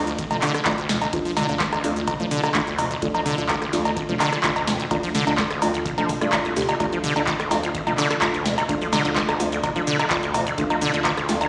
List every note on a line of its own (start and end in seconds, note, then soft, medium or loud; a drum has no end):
0.00 0.24 D2 medium
0.00 0.15 A3 medium
0.00 0.15 D4 medium
0.00 0.15 F4 loud
0.07 0.13 D2 medium
0.07 closed hi-hat soft
0.07 shaker soft
0.19 0.25 D2 medium
0.19 kick loud
0.19 closed hi-hat medium
0.19 shaker soft
0.31 0.38 A1 medium
0.31 0.37 F3 medium
0.31 0.63 A3 medium
0.31 0.63 D4 medium
0.31 0.63 F4 medium
0.31 closed hi-hat soft
0.31 mid tom medium
0.31 cowbell medium
0.31 shaker soft
0.42 0.52 D3 loud
0.42 clap medium
0.42 open hi-hat loud
0.42 shaker medium
0.54 0.61 D3 medium
0.54 cross-stick medium
0.54 closed hi-hat soft
0.54 shaker soft
0.65 0.73 D2 loud
0.65 0.79 A3 medium
0.65 0.79 D4 medium
0.65 0.79 F4 medium
0.65 kick loud
0.65 clap loud
0.65 closed hi-hat medium
0.65 cowbell medium
0.65 shaker soft
0.78 1.06 D2 medium
0.78 0.91 D2 medium
0.78 closed hi-hat soft
0.78 shaker soft
0.89 1.00 F2 medium
0.89 snare medium
0.89 mid tom loud
0.89 open hi-hat loud
0.89 shaker medium
1.02 1.08 D2 medium
1.02 closed hi-hat soft
1.02 cowbell medium
1.02 shaker soft
1.13 1.20 D2 medium
1.13 1.42 D2 loud
1.13 1.34 A3 medium
1.13 1.34 D4 medium
1.13 1.34 F4 loud
1.13 kick loud
1.13 closed hi-hat medium
1.13 shaker soft
1.25 1.32 F3 medium
1.25 open hi-hat medium
1.25 shaker soft
1.37 1.47 D3 loud
1.37 snare medium
1.37 mid tom medium
1.37 open hi-hat loud
1.37 cowbell medium
1.37 shaker medium
1.49 1.77 D2 medium
1.49 1.55 D3 medium
1.49 1.61 A3 medium
1.49 1.61 D4 medium
1.49 1.61 F4 medium
1.49 closed hi-hat soft
1.49 shaker soft
1.60 1.67 D2 loud
1.60 kick loud
1.60 snare medium
1.60 clap loud
1.60 closed hi-hat medium
1.60 shaker soft
1.73 1.85 D2 medium
1.73 cross-stick medium
1.73 closed hi-hat soft
1.73 cowbell medium
1.73 shaker soft
1.84 2.12 D2 medium
1.84 1.94 F2 medium
1.84 2.04 A3 medium
1.84 2.04 D4 medium
1.84 2.04 F4 loud
1.84 open hi-hat loud
1.84 shaker medium
1.96 2.02 D2 medium
1.96 closed hi-hat soft
1.96 shaker soft
2.08 2.14 D2 medium
2.08 kick loud
2.08 closed hi-hat medium
2.08 mid tom medium
2.08 cowbell medium
2.08 shaker soft
2.20 2.27 A1 medium
2.20 2.26 F3 medium
2.20 2.52 A3 medium
2.20 2.52 D4 medium
2.20 2.52 F4 medium
2.20 closed hi-hat soft
2.20 shaker soft
2.31 2.41 D3 loud
2.31 mid tom medium
2.31 open hi-hat loud
2.31 shaker medium
2.43 2.50 D3 medium
2.43 cross-stick medium
2.43 closed hi-hat soft
2.43 cowbell medium
2.43 shaker soft
2.54 2.62 D2 loud
2.54 2.68 A3 medium
2.54 2.68 D4 medium
2.54 2.68 F4 medium
2.54 kick loud
2.54 clap loud
2.54 closed hi-hat medium
2.54 shaker soft
2.67 2.80 D2 medium
2.67 2.95 D2 medium
2.67 closed hi-hat soft
2.67 shaker soft
2.78 2.88 F2 medium
2.78 mid tom loud
2.78 open hi-hat loud
2.78 cowbell medium
2.78 shaker medium
2.91 2.97 D2 medium
2.91 closed hi-hat soft
2.91 shaker soft
3.02 3.09 D2 medium
3.02 3.31 D2 loud
3.02 3.23 A3 loud
3.02 3.23 D4 medium
3.02 3.23 F4 loud
3.02 kick loud
3.02 closed hi-hat medium
3.02 shaker soft
3.14 3.21 F3 medium
3.14 closed hi-hat soft
3.14 cowbell medium
3.14 shaker soft
3.26 3.36 D3 loud
3.26 mid tom medium
3.26 open hi-hat loud
3.26 shaker medium
3.38 3.66 D2 medium
3.38 3.44 D3 medium
3.38 3.50 A3 medium
3.38 3.50 D4 medium
3.38 3.50 F4 medium
3.38 closed hi-hat soft
3.38 shaker soft
3.49 3.56 D2 loud
3.49 kick loud
3.49 clap loud
3.49 closed hi-hat medium
3.49 cowbell medium
3.49 shaker soft
3.62 3.75 D2 medium
3.62 cross-stick medium
3.62 closed hi-hat soft
3.62 shaker soft
3.73 4.01 D2 medium
3.73 3.83 F2 medium
3.73 3.94 A3 medium
3.73 3.94 D4 medium
3.73 3.94 F4 loud
3.73 snare soft
3.73 open hi-hat loud
3.73 shaker medium
3.85 3.91 D2 medium
3.85 closed hi-hat soft
3.85 cowbell medium
3.85 shaker soft
3.97 4.03 D2 medium
3.97 kick loud
3.97 closed hi-hat medium
3.97 shaker soft
4.09 4.16 A1 medium
4.09 4.15 F3 medium
4.09 4.41 A3 medium
4.09 4.41 D4 medium
4.09 4.41 F4 medium
4.09 closed hi-hat soft
4.09 mid tom medium
4.09 shaker soft
4.20 4.30 D3 loud
4.20 clap medium
4.20 open hi-hat loud
4.20 cowbell medium
4.20 shaker medium
4.33 4.39 D3 medium
4.33 cross-stick medium
4.33 closed hi-hat soft
4.33 shaker soft
4.43 4.51 D2 loud
4.43 4.57 A3 medium
4.43 4.57 D4 medium
4.43 4.57 F4 medium
4.43 kick loud
4.43 clap loud
4.43 closed hi-hat medium
4.43 shaker soft
4.56 4.84 D2 medium
4.56 4.69 D2 medium
4.56 closed hi-hat soft
4.56 cowbell medium
4.56 shaker soft
4.67 4.78 F2 medium
4.67 snare medium
4.67 mid tom medium
4.67 open hi-hat loud
4.67 shaker medium
4.80 4.86 D2 medium
4.80 closed hi-hat soft
4.80 shaker soft
4.91 5.20 D2 loud
4.91 4.98 D2 medium
4.91 5.12 A3 loud
4.91 5.12 D4 medium
4.91 5.12 F4 loud
4.91 kick loud
4.91 closed hi-hat medium
4.91 cowbell medium
4.91 shaker soft
5.03 5.10 F3 medium
5.03 open hi-hat medium
5.03 shaker soft
5.15 5.25 D3 loud
5.15 snare medium
5.15 mid tom medium
5.15 open hi-hat loud
5.15 shaker medium
5.27 5.55 D2 medium
5.27 5.33 D3 medium
5.27 5.39 A3 medium
5.27 5.39 D4 medium
5.27 5.39 F4 medium
5.27 closed hi-hat soft
5.27 cowbell medium
5.27 shaker soft
5.38 5.45 D2 loud
5.38 kick loud
5.38 snare medium
5.38 clap loud
5.38 closed hi-hat medium
5.38 shaker soft
5.51 5.63 D2 medium
5.51 cross-stick medium
5.51 closed hi-hat soft
5.51 shaker soft
5.62 5.90 D2 medium
5.62 5.72 F2 medium
5.62 5.82 A3 medium
5.62 5.82 D4 medium
5.62 5.82 F4 loud
5.62 open hi-hat loud
5.62 cowbell medium
5.62 shaker medium
5.74 5.80 D2 medium
5.74 closed hi-hat soft
5.74 shaker soft
5.86 5.92 D2 medium
5.86 kick loud
5.86 closed hi-hat medium
5.86 mid tom medium
5.86 shaker soft
5.98 6.05 A1 medium
5.98 6.11 F3 medium
5.98 6.19 A3 medium
5.98 6.19 D4 medium
5.98 6.19 F4 medium
5.98 closed hi-hat soft
5.98 cowbell medium
5.98 shaker soft
6.09 6.13 D2 loud
6.09 kick medium
6.09 mid tom medium
6.09 open hi-hat loud
6.09 shaker medium
6.21 6.31 G2 medium
6.21 6.31 A3 loud
6.21 6.31 D4 medium
6.21 6.31 F4 loud
6.21 cross-stick medium
6.21 closed hi-hat soft
6.21 shaker soft
6.32 6.40 A2 medium
6.32 6.54 A3 loud
6.32 6.54 D4 medium
6.32 6.54 F4 loud
6.32 kick loud
6.32 clap loud
6.32 closed hi-hat medium
6.32 cowbell medium
6.32 shaker soft
6.45 6.54 C2 medium
6.45 6.73 D2 loud
6.45 closed hi-hat soft
6.45 shaker soft
6.56 6.63 D2 loud
6.56 6.70 A3 medium
6.56 6.70 D4 medium
6.56 6.70 G4 medium
6.56 mid tom medium
6.56 open hi-hat loud
6.56 shaker medium
6.69 6.75 D2 medium
6.69 closed hi-hat soft
6.69 cowbell medium
6.69 shaker soft
6.80 6.87 D2 medium
6.80 7.09 D2 loud
6.80 7.01 A3 loud
6.80 7.01 D4 medium
6.80 7.01 F4 loud
6.80 kick loud
6.80 closed hi-hat medium
6.80 cowbell medium
6.80 shaker soft
6.92 6.99 F3 medium
6.92 closed hi-hat soft
6.92 shaker soft
7.04 7.14 D3 loud
7.04 mid tom medium
7.04 open hi-hat loud
7.04 shaker medium
7.16 7.44 D2 medium
7.16 7.22 D3 medium
7.16 7.28 A3 medium
7.16 7.28 D4 medium
7.16 7.28 F4 medium
7.16 closed hi-hat soft
7.16 cowbell medium
7.16 shaker soft
7.27 7.34 D2 loud
7.27 kick loud
7.27 clap loud
7.27 closed hi-hat medium
7.27 shaker soft
7.40 7.53 D2 medium
7.40 cross-stick medium
7.40 closed hi-hat soft
7.40 shaker soft
7.51 7.79 D2 medium
7.51 7.61 F2 medium
7.51 7.71 A3 medium
7.51 7.71 D4 medium
7.51 7.71 F4 loud
7.51 snare soft
7.51 open hi-hat loud
7.51 cowbell medium
7.51 shaker medium
7.63 7.69 D2 medium
7.63 closed hi-hat soft
7.63 shaker soft
7.75 7.81 D2 medium
7.75 kick loud
7.75 closed hi-hat medium
7.75 shaker soft
7.87 7.94 A1 medium
7.87 7.93 F3 medium
7.87 8.19 A3 medium
7.87 8.19 D4 medium
7.87 8.19 F4 medium
7.87 closed hi-hat soft
7.87 mid tom medium
7.87 cowbell medium
7.87 shaker soft
7.98 8.08 D3 loud
7.98 clap medium
7.98 open hi-hat loud
7.98 shaker medium
8.10 8.17 D3 medium
8.10 cross-stick medium
8.10 closed hi-hat soft
8.10 shaker soft
8.21 8.29 D2 loud
8.21 8.35 A3 medium
8.21 8.35 D4 medium
8.21 8.35 F4 medium
8.21 kick loud
8.21 clap loud
8.21 closed hi-hat medium
8.21 cowbell medium
8.21 shaker soft
8.34 8.62 D2 medium
8.34 8.47 D2 medium
8.34 closed hi-hat soft
8.34 shaker soft
8.46 8.56 F2 medium
8.46 snare medium
8.46 mid tom medium
8.46 open hi-hat loud
8.46 shaker medium
8.58 8.64 D2 medium
8.58 closed hi-hat soft
8.58 cowbell medium
8.58 shaker soft
8.69 8.98 D2 loud
8.69 8.76 D2 medium
8.69 8.90 A3 loud
8.69 8.90 D4 medium
8.69 8.90 F4 loud
8.69 kick loud
8.69 closed hi-hat medium
8.69 shaker soft
8.81 8.88 F3 medium
8.81 open hi-hat medium
8.81 shaker soft
8.93 9.03 D3 loud
8.93 snare medium
8.93 mid tom medium
8.93 open hi-hat loud
8.93 cowbell medium
8.93 shaker medium
9.05 9.33 D2 medium
9.05 9.11 D3 medium
9.05 9.17 A3 medium
9.05 9.17 D4 medium
9.05 9.17 F4 medium
9.05 closed hi-hat soft
9.05 shaker soft
9.16 9.23 D2 loud
9.16 kick loud
9.16 snare medium
9.16 clap loud
9.16 closed hi-hat loud
9.16 shaker soft
9.29 9.42 D2 medium
9.29 cross-stick medium
9.29 closed hi-hat soft
9.29 cowbell medium
9.29 shaker soft
9.40 9.68 D2 medium
9.40 9.50 F2 medium
9.40 9.60 A3 medium
9.40 9.60 D4 medium
9.40 9.60 F4 loud
9.40 open hi-hat loud
9.40 shaker medium
9.52 9.58 D2 medium
9.52 closed hi-hat soft
9.52 shaker soft
9.63 9.70 D2 medium
9.63 kick loud
9.63 closed hi-hat medium
9.63 mid tom medium
9.63 cowbell medium
9.63 shaker soft
9.76 9.83 A1 loud
9.76 9.82 F3 medium
9.76 10.08 A3 medium
9.76 10.08 D4 medium
9.76 10.08 F4 medium
9.76 closed hi-hat soft
9.76 shaker soft
9.87 9.97 D3 loud
9.87 mid tom medium
9.87 open hi-hat loud
9.87 shaker medium
9.99 10.06 D3 medium
9.99 cross-stick medium
9.99 closed hi-hat soft
9.99 cowbell medium
9.99 shaker soft
10.10 10.18 D2 loud
10.10 10.24 A3 medium
10.10 10.24 D4 medium
10.10 10.24 F4 medium
10.10 kick loud
10.10 clap loud
10.10 closed hi-hat medium
10.10 shaker soft
10.23 10.51 D2 medium
10.23 10.36 D2 medium
10.23 closed hi-hat soft
10.23 shaker soft
10.34 10.44 F2 medium
10.34 mid tom medium
10.34 open hi-hat loud
10.34 cowbell medium
10.34 shaker medium
10.47 10.53 D2 medium
10.47 closed hi-hat soft
10.47 shaker soft
10.58 10.65 D2 medium
10.58 10.86 D2 loud
10.58 10.78 A3 loud
10.58 10.78 D4 medium
10.58 10.78 F4 loud
10.58 kick loud
10.58 closed hi-hat medium
10.58 shaker soft
10.70 10.76 F3 medium
10.70 closed hi-hat soft
10.70 cowbell medium
10.70 shaker soft
10.81 10.92 D3 loud
10.81 mid tom medium
10.81 open hi-hat loud
10.81 shaker medium
10.94 11.22 D2 medium
10.94 11.00 D3 medium
10.94 11.06 A3 medium
10.94 11.06 D4 medium
10.94 11.06 F4 medium
10.94 closed hi-hat soft
10.94 shaker soft
11.05 11.12 D2 loud
11.05 kick loud
11.05 clap loud
11.05 closed hi-hat loud
11.05 cowbell medium
11.05 shaker soft
11.17 11.30 D2 medium
11.17 cross-stick medium
11.17 closed hi-hat soft
11.17 shaker soft
11.29 11.49 D2 medium
11.29 11.39 F2 medium
11.29 11.49 A3 medium
11.29 11.49 D4 medium
11.29 11.49 F4 loud
11.29 snare soft
11.29 open hi-hat loud
11.29 shaker medium
11.41 11.47 D2 medium
11.41 closed hi-hat soft
11.41 cowbell medium
11.41 shaker soft